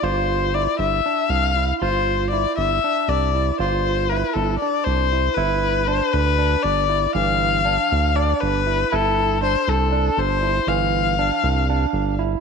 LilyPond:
<<
  \new Staff \with { instrumentName = "Erhu" } { \time 7/8 \key f \lydian \tempo 4 = 118 c''4 d''8 e''4 f''8. r16 | c''4 d''8 e''4 d''4 | c''4 b'8 a'8 d''8 c''4 | b'4 c''8 b'4 d''4 |
f''2 d''8 b'4 | a'4 c''8 a'4 c''4 | f''2. r8 | }
  \new Staff \with { instrumentName = "Tine electric piano" } { \time 7/8 \key f \lydian f'4 e'4 d'4 e'8 | f'4 e'4 d'4 e'8 | f'4 e'4 d'4 e'8 | e'4 d'4 d'4 e'8 |
e4 d'4 d'4 e'8 | e'4 d'4 d'4 e'8 | e4 d'4 d'4 e'8 | }
  \new Staff \with { instrumentName = "Analog synth bass" } { \clef bass \time 7/8 \key f \lydian g,,4. g,,8 r8 c,4 | g,,4. g,,8 r8 c,4 | g,,4. g,,8 r8 c,4 | g,,4. d,4 g,,4 |
g,,4. d,4 g,,4 | g,,4. c,4 g,,4 | g,,4. c,4 g,,4 | }
>>